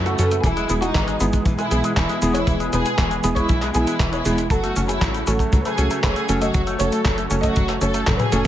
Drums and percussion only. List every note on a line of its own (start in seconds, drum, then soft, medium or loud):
0.06 closed hi-hat soft
0.06 cabasa soft
0.19 closed hi-hat medium
0.19 cabasa medium
0.31 closed hi-hat medium
0.31 cabasa soft
0.44 kick loud
0.44 closed hi-hat medium
0.44 cabasa soft
0.57 closed hi-hat soft
0.57 cabasa soft
0.70 closed hi-hat medium
0.70 cabasa medium
0.82 closed hi-hat soft
0.82 cabasa soft
0.95 kick loud
0.95 clap loud
0.95 closed hi-hat medium
0.95 cabasa soft
1.08 closed hi-hat soft
1.08 cabasa soft
1.20 closed hi-hat medium
1.20 cabasa medium
1.33 kick medium
1.33 closed hi-hat medium
1.33 cabasa soft
1.46 kick loud
1.46 closed hi-hat medium
1.46 cabasa soft
1.59 closed hi-hat soft
1.59 cabasa soft
1.71 closed hi-hat medium
1.71 cabasa medium
1.84 closed hi-hat medium
1.84 cabasa soft
1.97 kick loud
1.97 clap loud
1.97 closed hi-hat medium
1.97 cabasa soft
2.09 closed hi-hat soft
2.09 cabasa soft
2.22 closed hi-hat medium
2.22 cabasa medium
2.35 closed hi-hat medium
2.35 cabasa soft
2.47 kick loud
2.47 closed hi-hat medium
2.47 cabasa soft
2.60 closed hi-hat soft
2.60 cabasa soft
2.73 closed hi-hat medium
2.73 cabasa medium
2.86 closed hi-hat soft
2.86 cabasa soft
2.98 kick loud
2.98 clap loud
2.98 closed hi-hat medium
2.98 cabasa soft
3.11 closed hi-hat soft
3.11 cabasa soft
3.24 closed hi-hat medium
3.24 cabasa medium
3.36 kick medium
3.36 closed hi-hat medium
3.36 cabasa soft
3.49 kick loud
3.49 closed hi-hat medium
3.49 cabasa soft
3.62 clap soft
3.62 closed hi-hat soft
3.62 cabasa soft
3.75 closed hi-hat medium
3.75 cabasa medium
3.87 closed hi-hat medium
3.87 cabasa soft
4.00 kick loud
4.00 clap loud
4.00 closed hi-hat medium
4.00 cabasa soft
4.13 closed hi-hat soft
4.13 cabasa soft
4.25 closed hi-hat medium
4.25 cabasa medium
4.38 closed hi-hat medium
4.38 cabasa soft
4.50 kick loud
4.50 closed hi-hat medium
4.50 cabasa soft
4.64 closed hi-hat soft
4.64 cabasa soft
4.76 closed hi-hat medium
4.76 cabasa medium
4.89 closed hi-hat medium
4.89 cabasa soft
5.01 kick loud
5.01 clap loud
5.01 closed hi-hat medium
5.01 cabasa soft
5.14 closed hi-hat soft
5.14 cabasa soft
5.27 closed hi-hat medium
5.27 cabasa medium
5.39 kick medium
5.39 closed hi-hat medium
5.39 cabasa soft
5.53 kick loud
5.53 closed hi-hat medium
5.53 cabasa soft
5.65 closed hi-hat soft
5.65 cabasa soft
5.78 closed hi-hat medium
5.78 cabasa medium
5.91 closed hi-hat medium
5.91 cabasa soft
6.04 kick loud
6.04 clap loud
6.04 closed hi-hat medium
6.04 cabasa soft
6.16 closed hi-hat soft
6.16 cabasa soft
6.29 closed hi-hat medium
6.29 cabasa medium
6.42 closed hi-hat medium
6.42 cabasa soft
6.54 kick loud
6.54 closed hi-hat medium
6.54 cabasa soft
6.67 closed hi-hat soft
6.67 cabasa soft
6.80 closed hi-hat medium
6.80 cabasa medium
6.92 closed hi-hat medium
6.92 cabasa soft
7.05 kick loud
7.05 clap loud
7.05 closed hi-hat medium
7.05 cabasa soft
7.18 closed hi-hat soft
7.18 cabasa soft
7.31 closed hi-hat medium
7.31 cabasa medium
7.43 kick medium
7.43 closed hi-hat medium
7.43 cabasa soft
7.56 kick loud
7.56 closed hi-hat medium
7.56 cabasa soft
7.69 clap soft
7.69 closed hi-hat soft
7.69 cabasa soft
7.81 closed hi-hat medium
7.81 cabasa medium
7.94 closed hi-hat medium
7.94 cabasa soft
8.07 kick loud
8.07 clap loud
8.07 closed hi-hat medium
8.07 high tom medium
8.07 cabasa soft
8.20 closed hi-hat soft
8.20 high tom medium
8.20 cabasa soft
8.32 closed hi-hat medium
8.32 cabasa medium